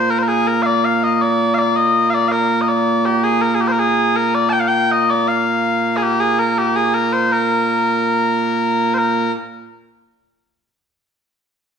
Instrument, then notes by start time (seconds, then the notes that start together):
bagpipes
Already playing: A#2 A#3 C5
0.10 A#4
0.19 C5
0.23 A#4
0.28 G#4
0.47 A#4
0.63 D5 F5
0.85 F5
1.03 D#5
1.14 D#5
1.22 D5
1.54 F5
1.59 D5
1.76 D#5
2.10 F5
2.14 D5
2.28 A#4 F5
2.61 D#5
2.68 D5
3.05 G4
3.24 G#4
3.41 A#4
3.55 G#4
3.60 G4
3.68 C5
3.72 A#4
3.79 G#4
4.16 A#4
4.35 D5
4.49 G5 A5
4.60 F5
4.68 G5
4.91 D#5
5.10 D5
5.28 F5
5.97 G#4
6.02 G4
6.20 G#4
6.39 A#4
6.58 G4
6.76 G#4
6.94 A#4
7.13 C5
7.32 A#4
8.94 A#4 C5